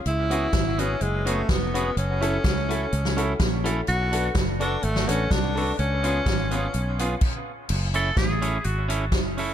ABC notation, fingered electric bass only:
X:1
M:4/4
L:1/8
Q:"Swing" 1/4=126
K:F#m
V:1 name="Fingered electric bass" clef=bass
C,,2 G,,,2 F,,,2 ^E,,,2 | F,,,2 C,,2 C,,2 ^A,,,2 | B,,,2 F,,,2 G,,, A,,, ^B,,,2 | C,,2 G,,,2 B,,,2 z2 |
F,,,2 A,,,2 G,,,2 F,,,2 |]